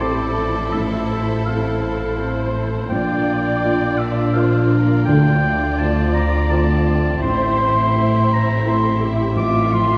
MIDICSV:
0, 0, Header, 1, 9, 480
1, 0, Start_track
1, 0, Tempo, 726392
1, 480, Time_signature, 3, 2, 24, 8
1, 3356, Tempo, 713436
1, 6652, End_track
2, 0, Start_track
2, 0, Title_t, "Oboe"
2, 0, Program_c, 0, 68
2, 5, Note_on_c, 0, 74, 57
2, 483, Note_on_c, 0, 76, 63
2, 493, Note_off_c, 0, 74, 0
2, 968, Note_on_c, 0, 77, 51
2, 978, Note_off_c, 0, 76, 0
2, 1682, Note_off_c, 0, 77, 0
2, 1914, Note_on_c, 0, 79, 64
2, 2631, Note_on_c, 0, 76, 58
2, 2641, Note_off_c, 0, 79, 0
2, 2868, Note_on_c, 0, 77, 49
2, 2878, Note_off_c, 0, 76, 0
2, 3334, Note_off_c, 0, 77, 0
2, 3338, Note_on_c, 0, 79, 62
2, 3833, Note_on_c, 0, 81, 60
2, 3843, Note_off_c, 0, 79, 0
2, 4073, Note_on_c, 0, 82, 64
2, 4083, Note_off_c, 0, 81, 0
2, 4314, Note_on_c, 0, 81, 56
2, 4324, Note_off_c, 0, 82, 0
2, 4795, Note_off_c, 0, 81, 0
2, 4799, Note_on_c, 0, 84, 72
2, 5546, Note_on_c, 0, 82, 73
2, 5556, Note_off_c, 0, 84, 0
2, 5780, Note_on_c, 0, 84, 68
2, 5790, Note_off_c, 0, 82, 0
2, 6080, Note_off_c, 0, 84, 0
2, 6245, Note_on_c, 0, 86, 75
2, 6484, Note_on_c, 0, 84, 74
2, 6495, Note_off_c, 0, 86, 0
2, 6652, Note_off_c, 0, 84, 0
2, 6652, End_track
3, 0, Start_track
3, 0, Title_t, "Violin section"
3, 0, Program_c, 1, 48
3, 0, Note_on_c, 1, 72, 42
3, 1895, Note_off_c, 1, 72, 0
3, 1937, Note_on_c, 1, 74, 41
3, 4784, Note_off_c, 1, 74, 0
3, 4805, Note_on_c, 1, 76, 50
3, 6652, Note_off_c, 1, 76, 0
3, 6652, End_track
4, 0, Start_track
4, 0, Title_t, "Viola section"
4, 0, Program_c, 2, 48
4, 2, Note_on_c, 2, 67, 40
4, 241, Note_off_c, 2, 67, 0
4, 245, Note_on_c, 2, 53, 44
4, 948, Note_off_c, 2, 53, 0
4, 960, Note_on_c, 2, 69, 43
4, 1197, Note_off_c, 2, 69, 0
4, 1205, Note_on_c, 2, 69, 43
4, 1442, Note_off_c, 2, 69, 0
4, 1452, Note_on_c, 2, 72, 48
4, 1915, Note_off_c, 2, 72, 0
4, 1928, Note_on_c, 2, 74, 59
4, 2879, Note_on_c, 2, 72, 46
4, 2883, Note_off_c, 2, 74, 0
4, 3117, Note_off_c, 2, 72, 0
4, 3121, Note_on_c, 2, 70, 45
4, 3357, Note_off_c, 2, 70, 0
4, 3357, Note_on_c, 2, 69, 49
4, 3593, Note_on_c, 2, 74, 56
4, 3598, Note_off_c, 2, 69, 0
4, 4796, Note_on_c, 2, 72, 64
4, 4800, Note_off_c, 2, 74, 0
4, 5272, Note_off_c, 2, 72, 0
4, 5285, Note_on_c, 2, 72, 55
4, 5754, Note_off_c, 2, 72, 0
4, 5768, Note_on_c, 2, 69, 50
4, 6003, Note_off_c, 2, 69, 0
4, 6010, Note_on_c, 2, 67, 52
4, 6239, Note_on_c, 2, 65, 57
4, 6242, Note_off_c, 2, 67, 0
4, 6652, Note_off_c, 2, 65, 0
4, 6652, End_track
5, 0, Start_track
5, 0, Title_t, "Felt piano"
5, 0, Program_c, 3, 0
5, 0, Control_c, 3, 64, 127
5, 0, Note_on_c, 3, 33, 40
5, 0, Note_on_c, 3, 60, 30
5, 0, Note_on_c, 3, 69, 31
5, 0, Note_on_c, 3, 72, 33
5, 5, Note_off_c, 3, 69, 0
5, 5, Note_on_c, 3, 69, 36
5, 6, Note_off_c, 3, 60, 0
5, 6, Note_off_c, 3, 72, 0
5, 6, Note_on_c, 3, 60, 35
5, 6, Note_on_c, 3, 72, 36
5, 457, Note_off_c, 3, 69, 0
5, 458, Note_off_c, 3, 60, 0
5, 458, Note_off_c, 3, 72, 0
5, 489, Note_off_c, 3, 33, 0
5, 489, Note_on_c, 3, 33, 42
5, 491, Control_c, 3, 64, 0
5, 598, Control_c, 3, 64, 127
5, 949, Note_off_c, 3, 33, 0
5, 968, Note_on_c, 3, 69, 26
5, 970, Note_on_c, 3, 60, 27
5, 971, Note_on_c, 3, 72, 33
5, 1417, Note_off_c, 3, 69, 0
5, 1418, Note_off_c, 3, 60, 0
5, 1418, Note_off_c, 3, 72, 0
5, 1437, Note_on_c, 3, 60, 33
5, 1442, Note_on_c, 3, 69, 31
5, 1445, Note_on_c, 3, 72, 32
5, 1890, Note_off_c, 3, 60, 0
5, 1893, Note_off_c, 3, 69, 0
5, 1894, Note_off_c, 3, 72, 0
5, 1928, Note_on_c, 3, 34, 37
5, 1929, Control_c, 3, 64, 0
5, 2047, Control_c, 3, 64, 127
5, 2390, Note_off_c, 3, 34, 0
5, 2410, Note_on_c, 3, 58, 31
5, 2411, Note_on_c, 3, 65, 28
5, 2413, Note_on_c, 3, 74, 31
5, 2857, Note_off_c, 3, 58, 0
5, 2858, Note_off_c, 3, 65, 0
5, 2859, Note_off_c, 3, 74, 0
5, 2876, Note_on_c, 3, 58, 35
5, 2879, Note_on_c, 3, 65, 36
5, 2885, Note_on_c, 3, 74, 33
5, 3327, Note_off_c, 3, 58, 0
5, 3329, Note_off_c, 3, 65, 0
5, 3332, Note_off_c, 3, 74, 0
5, 3358, Note_on_c, 3, 38, 45
5, 3368, Control_c, 3, 64, 0
5, 3483, Control_c, 3, 64, 127
5, 3825, Note_off_c, 3, 38, 0
5, 3838, Note_on_c, 3, 57, 31
5, 3843, Note_on_c, 3, 65, 30
5, 3848, Note_on_c, 3, 72, 31
5, 4291, Note_off_c, 3, 57, 0
5, 4293, Note_off_c, 3, 65, 0
5, 4296, Note_off_c, 3, 72, 0
5, 4318, Note_on_c, 3, 57, 36
5, 4323, Note_on_c, 3, 72, 41
5, 4324, Note_on_c, 3, 65, 35
5, 4775, Note_off_c, 3, 57, 0
5, 4778, Note_off_c, 3, 65, 0
5, 4778, Note_off_c, 3, 72, 0
5, 4804, Note_on_c, 3, 33, 41
5, 4815, Control_c, 3, 64, 0
5, 4937, Control_c, 3, 64, 127
5, 5271, Note_off_c, 3, 33, 0
5, 5288, Note_on_c, 3, 57, 34
5, 5291, Note_on_c, 3, 64, 34
5, 5292, Note_on_c, 3, 72, 36
5, 5738, Note_off_c, 3, 57, 0
5, 5739, Note_off_c, 3, 64, 0
5, 5740, Note_off_c, 3, 72, 0
5, 5760, Note_on_c, 3, 57, 39
5, 5762, Note_on_c, 3, 64, 38
5, 5765, Note_on_c, 3, 72, 38
5, 6209, Note_off_c, 3, 57, 0
5, 6210, Note_off_c, 3, 64, 0
5, 6212, Note_off_c, 3, 72, 0
5, 6238, Note_on_c, 3, 33, 49
5, 6249, Control_c, 3, 64, 0
5, 6364, Control_c, 3, 64, 127
5, 6652, Note_off_c, 3, 33, 0
5, 6652, End_track
6, 0, Start_track
6, 0, Title_t, "Violin section"
6, 0, Program_c, 4, 48
6, 0, Note_on_c, 4, 64, 47
6, 0, Note_on_c, 4, 69, 50
6, 1893, Note_off_c, 4, 64, 0
6, 1893, Note_off_c, 4, 69, 0
6, 1910, Note_on_c, 4, 62, 46
6, 1910, Note_on_c, 4, 65, 48
6, 3831, Note_on_c, 4, 60, 48
6, 3833, Note_off_c, 4, 62, 0
6, 4771, Note_off_c, 4, 65, 0
6, 4793, Note_on_c, 4, 64, 55
6, 6206, Note_off_c, 4, 64, 0
6, 6232, Note_off_c, 4, 60, 0
6, 6240, Note_on_c, 4, 60, 50
6, 6241, Note_on_c, 4, 65, 52
6, 6652, Note_off_c, 4, 60, 0
6, 6652, Note_off_c, 4, 65, 0
6, 6652, End_track
7, 0, Start_track
7, 0, Title_t, "Harp"
7, 0, Program_c, 5, 46
7, 0, Note_on_c, 5, 45, 47
7, 0, Note_on_c, 5, 60, 34
7, 0, Note_on_c, 5, 72, 38
7, 9, Note_on_c, 5, 69, 38
7, 240, Note_off_c, 5, 60, 0
7, 248, Note_on_c, 5, 60, 38
7, 480, Note_off_c, 5, 45, 0
7, 488, Note_on_c, 5, 45, 49
7, 720, Note_off_c, 5, 60, 0
7, 728, Note_on_c, 5, 60, 33
7, 955, Note_off_c, 5, 69, 0
7, 963, Note_on_c, 5, 69, 33
7, 1195, Note_off_c, 5, 72, 0
7, 1203, Note_on_c, 5, 72, 31
7, 1437, Note_off_c, 5, 69, 0
7, 1445, Note_on_c, 5, 69, 37
7, 1675, Note_off_c, 5, 60, 0
7, 1683, Note_on_c, 5, 60, 33
7, 1915, Note_on_c, 5, 46, 50
7, 1939, Note_off_c, 5, 60, 0
7, 1939, Note_off_c, 5, 72, 0
7, 1940, Note_off_c, 5, 69, 0
7, 1941, Note_off_c, 5, 45, 0
7, 2162, Note_on_c, 5, 58, 31
7, 2404, Note_on_c, 5, 65, 35
7, 2638, Note_on_c, 5, 70, 35
7, 2871, Note_off_c, 5, 65, 0
7, 2879, Note_on_c, 5, 65, 38
7, 3104, Note_off_c, 5, 58, 0
7, 3112, Note_on_c, 5, 58, 37
7, 3347, Note_on_c, 5, 50, 46
7, 3372, Note_off_c, 5, 58, 0
7, 3373, Note_off_c, 5, 46, 0
7, 3373, Note_off_c, 5, 70, 0
7, 3595, Note_on_c, 5, 57, 38
7, 3825, Note_off_c, 5, 65, 0
7, 3833, Note_on_c, 5, 65, 41
7, 4075, Note_on_c, 5, 72, 38
7, 4313, Note_off_c, 5, 65, 0
7, 4321, Note_on_c, 5, 65, 43
7, 4560, Note_off_c, 5, 57, 0
7, 4568, Note_on_c, 5, 57, 36
7, 4808, Note_on_c, 5, 45, 55
7, 4817, Note_off_c, 5, 50, 0
7, 4823, Note_off_c, 5, 65, 0
7, 5043, Note_off_c, 5, 57, 0
7, 5051, Note_on_c, 5, 57, 35
7, 5284, Note_on_c, 5, 76, 42
7, 5761, Note_on_c, 5, 60, 47
7, 5991, Note_off_c, 5, 57, 0
7, 5999, Note_on_c, 5, 57, 44
7, 6225, Note_off_c, 5, 45, 0
7, 6234, Note_on_c, 5, 45, 50
7, 6480, Note_on_c, 5, 53, 39
7, 6652, Note_off_c, 5, 45, 0
7, 6652, Note_off_c, 5, 53, 0
7, 6652, Note_off_c, 5, 57, 0
7, 6652, Note_off_c, 5, 60, 0
7, 6652, Note_off_c, 5, 72, 0
7, 6652, Note_off_c, 5, 76, 0
7, 6652, End_track
8, 0, Start_track
8, 0, Title_t, "Cello section"
8, 0, Program_c, 6, 48
8, 0, Note_on_c, 6, 45, 48
8, 1892, Note_off_c, 6, 45, 0
8, 1913, Note_on_c, 6, 46, 49
8, 3326, Note_off_c, 6, 46, 0
8, 3347, Note_on_c, 6, 50, 48
8, 4798, Note_off_c, 6, 50, 0
8, 4800, Note_on_c, 6, 45, 53
8, 6652, Note_off_c, 6, 45, 0
8, 6652, End_track
9, 0, Start_track
9, 0, Title_t, "Double bass section"
9, 0, Program_c, 7, 48
9, 0, Note_on_c, 7, 33, 46
9, 1893, Note_off_c, 7, 33, 0
9, 1918, Note_on_c, 7, 34, 45
9, 3328, Note_off_c, 7, 34, 0
9, 3347, Note_on_c, 7, 38, 50
9, 4796, Note_on_c, 7, 33, 56
9, 4798, Note_off_c, 7, 38, 0
9, 6652, Note_off_c, 7, 33, 0
9, 6652, End_track
0, 0, End_of_file